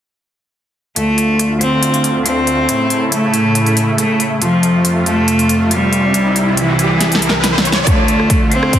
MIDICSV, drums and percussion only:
0, 0, Header, 1, 2, 480
1, 0, Start_track
1, 0, Key_signature, -1, "minor"
1, 0, Tempo, 431655
1, 1071, Time_signature, 4, 2, 24, 8
1, 9776, End_track
2, 0, Start_track
2, 0, Title_t, "Drums"
2, 1071, Note_on_c, 9, 42, 77
2, 1182, Note_off_c, 9, 42, 0
2, 1311, Note_on_c, 9, 42, 49
2, 1422, Note_off_c, 9, 42, 0
2, 1551, Note_on_c, 9, 42, 76
2, 1662, Note_off_c, 9, 42, 0
2, 1790, Note_on_c, 9, 42, 51
2, 1902, Note_off_c, 9, 42, 0
2, 2030, Note_on_c, 9, 42, 74
2, 2142, Note_off_c, 9, 42, 0
2, 2155, Note_on_c, 9, 42, 35
2, 2266, Note_off_c, 9, 42, 0
2, 2270, Note_on_c, 9, 42, 59
2, 2381, Note_off_c, 9, 42, 0
2, 2509, Note_on_c, 9, 42, 76
2, 2620, Note_off_c, 9, 42, 0
2, 2749, Note_on_c, 9, 42, 48
2, 2860, Note_off_c, 9, 42, 0
2, 2989, Note_on_c, 9, 42, 75
2, 3100, Note_off_c, 9, 42, 0
2, 3229, Note_on_c, 9, 42, 51
2, 3340, Note_off_c, 9, 42, 0
2, 3469, Note_on_c, 9, 42, 76
2, 3581, Note_off_c, 9, 42, 0
2, 3710, Note_on_c, 9, 42, 51
2, 3821, Note_off_c, 9, 42, 0
2, 3950, Note_on_c, 9, 42, 75
2, 4061, Note_off_c, 9, 42, 0
2, 4075, Note_on_c, 9, 42, 35
2, 4186, Note_off_c, 9, 42, 0
2, 4190, Note_on_c, 9, 42, 59
2, 4301, Note_off_c, 9, 42, 0
2, 4429, Note_on_c, 9, 42, 73
2, 4541, Note_off_c, 9, 42, 0
2, 4670, Note_on_c, 9, 42, 52
2, 4781, Note_off_c, 9, 42, 0
2, 4910, Note_on_c, 9, 42, 73
2, 5021, Note_off_c, 9, 42, 0
2, 5150, Note_on_c, 9, 42, 49
2, 5261, Note_off_c, 9, 42, 0
2, 5390, Note_on_c, 9, 42, 74
2, 5502, Note_off_c, 9, 42, 0
2, 5630, Note_on_c, 9, 42, 48
2, 5741, Note_off_c, 9, 42, 0
2, 5870, Note_on_c, 9, 42, 75
2, 5982, Note_off_c, 9, 42, 0
2, 5995, Note_on_c, 9, 42, 35
2, 6106, Note_off_c, 9, 42, 0
2, 6110, Note_on_c, 9, 42, 62
2, 6221, Note_off_c, 9, 42, 0
2, 6350, Note_on_c, 9, 42, 76
2, 6461, Note_off_c, 9, 42, 0
2, 6590, Note_on_c, 9, 42, 49
2, 6701, Note_off_c, 9, 42, 0
2, 6830, Note_on_c, 9, 42, 71
2, 6941, Note_off_c, 9, 42, 0
2, 7070, Note_on_c, 9, 42, 48
2, 7182, Note_off_c, 9, 42, 0
2, 7310, Note_on_c, 9, 42, 74
2, 7421, Note_off_c, 9, 42, 0
2, 7551, Note_on_c, 9, 42, 50
2, 7662, Note_off_c, 9, 42, 0
2, 7790, Note_on_c, 9, 38, 63
2, 7790, Note_on_c, 9, 42, 73
2, 7901, Note_off_c, 9, 38, 0
2, 7901, Note_off_c, 9, 42, 0
2, 7915, Note_on_c, 9, 42, 36
2, 7950, Note_on_c, 9, 38, 73
2, 8026, Note_off_c, 9, 42, 0
2, 8030, Note_on_c, 9, 42, 60
2, 8061, Note_off_c, 9, 38, 0
2, 8110, Note_on_c, 9, 38, 78
2, 8141, Note_off_c, 9, 42, 0
2, 8221, Note_off_c, 9, 38, 0
2, 8269, Note_on_c, 9, 38, 80
2, 8269, Note_on_c, 9, 42, 73
2, 8380, Note_off_c, 9, 38, 0
2, 8380, Note_off_c, 9, 42, 0
2, 8429, Note_on_c, 9, 38, 92
2, 8510, Note_on_c, 9, 42, 49
2, 8540, Note_off_c, 9, 38, 0
2, 8589, Note_on_c, 9, 38, 96
2, 8621, Note_off_c, 9, 42, 0
2, 8700, Note_off_c, 9, 38, 0
2, 8749, Note_on_c, 9, 36, 90
2, 8749, Note_on_c, 9, 42, 77
2, 8860, Note_off_c, 9, 42, 0
2, 8861, Note_off_c, 9, 36, 0
2, 8989, Note_on_c, 9, 42, 51
2, 9100, Note_off_c, 9, 42, 0
2, 9114, Note_on_c, 9, 37, 50
2, 9225, Note_off_c, 9, 37, 0
2, 9229, Note_on_c, 9, 36, 92
2, 9229, Note_on_c, 9, 42, 79
2, 9340, Note_off_c, 9, 42, 0
2, 9341, Note_off_c, 9, 36, 0
2, 9469, Note_on_c, 9, 42, 52
2, 9580, Note_off_c, 9, 42, 0
2, 9594, Note_on_c, 9, 37, 74
2, 9705, Note_off_c, 9, 37, 0
2, 9709, Note_on_c, 9, 42, 79
2, 9710, Note_on_c, 9, 36, 89
2, 9776, Note_off_c, 9, 36, 0
2, 9776, Note_off_c, 9, 42, 0
2, 9776, End_track
0, 0, End_of_file